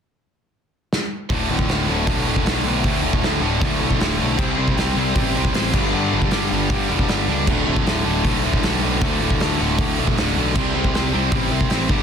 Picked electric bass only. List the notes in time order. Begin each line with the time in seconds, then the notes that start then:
1.31 D1
1.50 D1
1.70 D1
1.89 D1
2.07 B1
2.26 D1
2.47 B1
2.64 B1
2.84 D2
3.03 D1
3.22 D2
3.41 D1
3.62 D2
3.80 B1
4.00 D1
4.20 B1
4.39 C2
4.58 C2
4.76 C2
4.96 C2
5.16 A1
5.37 C2
5.56 A1
5.73 G1
5.94 G2
6.13 G1
6.31 G2
6.52 G1
6.70 G2
6.90 E1
7.09 G1
7.28 C#2
7.47 D1
7.67 D1
7.87 D1
8.05 D1
8.24 B1
8.44 D1
8.64 B1
8.83 B1
9.02 D2
9.20 D1
9.41 D2
9.60 D1
9.79 D2
9.99 B1
10.17 D1
10.36 B1
10.56 C2
10.76 C2
10.96 C2
11.15 C2
11.32 A1
11.52 C2
11.70 A1
11.89 G1